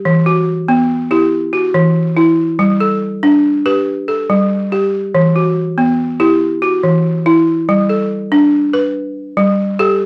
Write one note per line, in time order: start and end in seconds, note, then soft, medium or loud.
0.05 0.48 E3 medium
0.26 0.90 F#4 medium
0.68 1.11 B3 medium
1.11 1.75 E4 medium
1.11 1.54 G4 medium
1.53 2.17 F#4 medium
1.74 2.17 E3 medium
2.17 2.59 E4 medium
2.59 3.02 G3 medium
2.80 3.44 A4 medium
3.23 3.66 D4 medium
3.66 4.29 G4 medium
3.66 4.08 B4 medium
4.08 4.72 A4 medium
4.30 4.72 G3 medium
4.72 5.14 G4 medium
5.15 5.57 E3 medium
5.36 5.99 F#4 medium
5.78 6.20 B3 medium
6.20 6.84 E4 medium
6.20 6.62 G4 medium
6.62 7.26 F#4 medium
6.83 7.26 E3 medium
7.26 7.68 E4 medium
7.69 8.11 G3 medium
7.89 8.53 A4 medium
8.32 8.74 D4 medium
8.73 9.16 B4 medium
9.37 9.79 G3 medium
9.79 10.06 G4 medium
9.79 10.06 A4 medium